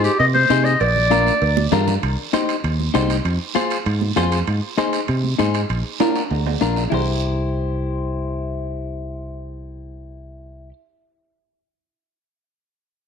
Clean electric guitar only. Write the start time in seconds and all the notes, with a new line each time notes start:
Already playing: D#4 G#4 C5
0.50 D#4 G#4 C5
1.11 D4 F4 A#4
1.72 D4 F4 A#4
2.33 D#4 G4 C5
2.94 D#4 G4 C5
3.55 F4 G#4 C5
4.16 F4 G#4 C5
4.78 D#4 G#4 C5
5.39 D#4 G#4 C5
6.00 D4 F4 A#4
6.61 D4 F4 A#4
6.90 E4 G4
6.94 C5